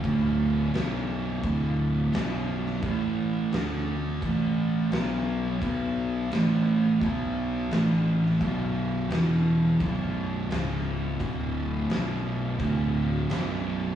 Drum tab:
CC |x---x---x---x---|x---x---x---x---|x---x---x---x---|x---x---x---x---|
SD |----o-------o--o|----o-------o---|----o-------o--o|----o-------o---|
BD |o-------o-------|o-------o-------|o-------o-------|o-------o-------|

CC |x---x---x---x---|
SD |----o-------o---|
BD |o-------o-------|